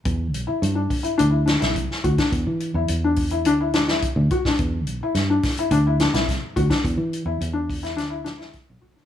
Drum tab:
HH |x-x-x-oxx-xxx-xx|x-x-x-oxx-x-x-x-|x-x-x-oxx-xxx-xx|x-x-x-oxx-x-x---|
SD |----------oo-o-o|----------oo---o|----o-o---ooo--o|-------oo-ooo--o|
BD |o-----o-----o-oo|o-----o-----o-oo|o-----o-----o-oo|o-----o-----o-o-|